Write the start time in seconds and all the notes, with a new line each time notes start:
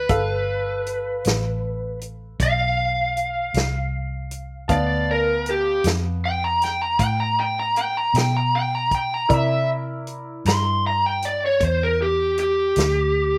Already playing: B4
0.09 G1 A4 B4 F5, kick, closed hi-hat
0.86 closed hi-hat
1.25 A1, snare, closed hi-hat
2.01 closed hi-hat
2.40 B1 F5, kick, closed hi-hat
3.17 closed hi-hat
3.54 C2, snare, closed hi-hat
4.31 closed hi-hat
4.68 D2 B3 D5 F5 A5, kick, closed hi-hat
5.11 A#4
5.46 closed hi-hat
5.50 G4
5.84 F2, snare, closed hi-hat
6.25 G5
6.44 A#5
6.62 G5, snare, closed hi-hat
6.82 A#5
6.99 A2 G5, kick, closed hi-hat
7.20 A#5
7.40 G5
7.59 A#5
7.76 G5, closed hi-hat
7.97 A#5
8.14 B2 G5, snare, closed hi-hat
8.37 A#5
8.56 G5
8.75 A#5
8.91 G5, kick, closed hi-hat
9.14 A#5
9.28 C3 E4 A#4 D5, kick, closed hi-hat
9.34 E5
10.07 closed hi-hat
10.45 G2 C6, snare, closed hi-hat
10.87 A#5
11.06 G5
11.22 D5, closed hi-hat
11.46 C#5
11.60 E2, kick, closed hi-hat
11.65 C5
11.83 A#4
12.02 G4
12.38 G4, closed hi-hat
12.76 D2, snare, closed hi-hat